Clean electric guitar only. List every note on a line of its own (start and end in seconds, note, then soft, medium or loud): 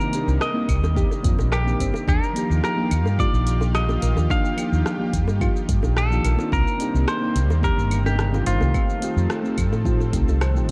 0.00 0.38 A#4 loud
0.42 1.56 D#5 loud
1.53 2.08 G4 loud
2.09 2.63 A#4 loud
2.64 3.21 A#4 loud
3.20 3.75 D5 medium
3.75 4.31 D#5 loud
4.31 5.98 F5 loud
5.98 6.53 A4 loud
6.53 7.08 A#4 loud
7.08 7.60 C5 medium
7.64 8.03 A#4 medium
8.06 8.44 G4 loud
8.47 10.37 F4 medium